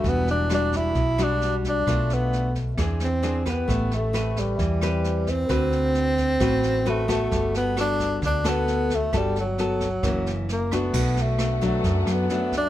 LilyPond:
<<
  \new Staff \with { instrumentName = "String section" } { \time 4/4 \key g \major \tempo 4 = 132 r1 | r1 | r1 | r1 |
r1 | r1 | <d' a' b' fis''>1 | }
  \new Staff \with { instrumentName = "Nylon-string guitar" } { \time 4/4 \key g \major << { <g d' fis'>4 <g d' fis'>4 r8 <g d' fis'>4. | <a d' f'>4. r8 <bis d' gis'>8 r8 <bis d' gis'>8 <g' b'>8~ | <g' b'>4 <c' g' b'>4 r8 <c' g' b'>4. | <c' fis' b'>4. r8 <c' fis' b'>4 <c' fis' b'>8 <b fis' a'>8~ |
<b fis' a'>4 <b fis' a'>4. <b fis' a'>4. | <b fis' a'>8 r8 <b fis' a'>8 r8 <e ais cis'>4 r8 <a d' fis'>8~ | <a d' fis'>4 r8 <fis a d'>4. <fis a d'>4 | } \\ { e2 b,2 | b,2 e2 | a2 e2 | d2 a,2 |
g2 d2 | r2 fis,2 | b,2 fis,2 | } >> }
  \new Staff \with { instrumentName = "Tenor saxophone" } { \time 4/4 \key g \major b8 d'8 d'8 e'4 d'4 d'8~ | d'8 b4 r4 bis4 b8~ | b8 a4 g2 c'8~ | c'2. a8 a8~ |
a8 b8 d'4 d'8 b4 a8 | g8 fis2~ fis8 ais8 b8~ | b8 a4 a4 b4 d'8 | }
  \new Staff \with { instrumentName = "Fingered electric bass" } { \clef bass \time 4/4 \key g \major e,,2 b,,2 | b,,2 e,2 | a,,2 e,2 | d,2 a,,2 |
g,,2 d,2 | g,,2 fis,,2 | b,,2 fis,8 fis,8 r4 | }
  \new DrumStaff \with { instrumentName = "Drums" } \drummode { \time 4/4 <bd sn>8 sn8 <ss sn>8 <bd sn>8 <bd sn>8 <ss sn>8 sn8 <bd sn>8 | <bd ss sn>8 sn8 sn8 <bd sn>8 <bd ss sn>8 sn8 sn8 <bd ss sn>8 | <bd sn>8 sn8 <ss sn>8 <bd sn>8 <bd sn>8 <ss sn>8 sn8 <bd sn>8 | <bd ss sn>8 sn8 sn8 <bd sn>8 <bd ss sn>8 sn8 sn8 <bd ss sn>8 |
<bd sn>8 sn8 <ss sn>8 <bd sn>8 <bd sn>8 <ss sn>8 sn8 <bd sn>8 | <bd ss sn>8 sn8 sn8 <bd sn>8 <bd ss sn>8 sn8 sn8 <bd ss sn>8 | <cymc bd sn>8 sn8 <ss sn>8 <bd sn>8 <bd sn>8 <ss sn>8 sn8 <bd sn>8 | }
>>